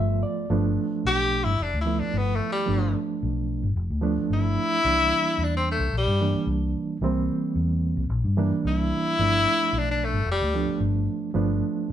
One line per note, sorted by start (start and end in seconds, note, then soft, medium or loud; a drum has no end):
0.00 0.22 G1 medium
0.00 0.44 F3 medium
0.00 0.45 A3 medium
0.00 0.45 B3 medium
0.00 0.45 F4 medium
0.00 0.22 E5 medium
0.23 0.48 D5 medium
0.50 0.76 G1 medium
0.50 1.51 F3 medium
0.50 1.51 A3 medium
0.50 1.51 B3 medium
0.50 1.52 D4 medium
1.05 1.44 B1 medium
1.05 1.46 G4 loud
1.44 1.58 G1 medium
1.44 1.64 E4 loud
1.60 1.72 F1 medium
1.60 1.79 D4 medium
1.73 1.99 D2 medium
1.81 2.61 F3 medium
1.81 2.01 E4 medium
1.86 2.62 A3 medium
1.86 2.62 B3 medium
1.86 2.62 E4 medium
2.00 2.19 D4 medium
2.00 muted fingered electric bass stroke soft
2.13 2.39 G1 medium
2.18 2.37 B3 loud
2.36 2.51 A3 medium
2.52 3.04 G3 loud
2.66 2.94 G1 medium
2.66 3.67 F3 medium
2.66 3.67 A3 medium
2.66 3.68 B3 medium
2.66 3.68 D4 medium
3.23 3.61 B1 medium
3.63 3.75 G1 medium
3.76 3.89 F1 medium
3.90 4.16 D2 medium
4.01 4.78 F3 medium
4.01 4.78 A3 medium
4.01 4.78 B3 medium
4.01 4.79 D4 medium
4.17 muted fingered electric bass stroke soft
4.30 4.56 G1 medium
4.30 5.46 E4 loud
4.84 5.10 C2 medium
4.84 5.85 E3 medium
4.84 5.85 G3 medium
4.84 5.86 A#3 medium
4.84 5.86 D4 medium
5.38 5.77 E2 medium
5.44 5.55 D4 medium
5.57 5.68 C4 medium
5.72 5.95 A3 medium
5.79 5.92 C2 medium
5.92 6.06 A#1 medium
5.98 6.48 G3 loud
6.06 6.32 G2 medium
6.20 6.96 E3 medium
6.20 6.96 G3 medium
6.20 6.97 A#3 medium
6.20 6.96 D4 medium
6.33 muted fingered electric bass stroke soft
6.47 6.73 C2 loud
7.01 7.27 C2 medium
7.01 8.03 E3 medium
7.01 8.03 G3 medium
7.01 8.03 A#3 medium
7.01 8.03 C4 loud
7.55 7.95 E2 medium
7.96 8.09 C2 medium
8.09 8.23 A#1 medium
8.24 8.50 G2 medium
8.37 9.13 E3 medium
8.37 9.13 G3 medium
8.37 9.13 A#3 medium
8.37 9.13 D4 medium
8.52 muted fingered electric bass stroke soft
8.65 8.90 C2 loud
8.65 9.80 E4 loud
9.19 9.45 G1 medium
9.19 10.19 F3 medium
9.19 10.19 A3 medium
9.19 10.20 B3 medium
9.19 10.20 D4 medium
9.73 10.12 B1 medium
9.78 9.89 D4 medium
9.91 10.06 D4 medium
10.05 10.29 A3 medium
10.13 10.25 G1 medium
10.26 10.40 F1 medium
10.32 10.82 G3 loud
10.41 10.66 D2 medium
10.54 11.29 F3 medium
10.54 11.30 A3 medium
10.54 11.30 B3 medium
10.54 11.30 D4 medium
10.67 muted fingered electric bass stroke soft
10.80 11.06 G1 medium
11.34 11.61 G1 medium
11.34 11.92 F3 medium
11.34 11.92 A3 medium
11.34 11.92 B3 medium
11.34 11.92 D4 medium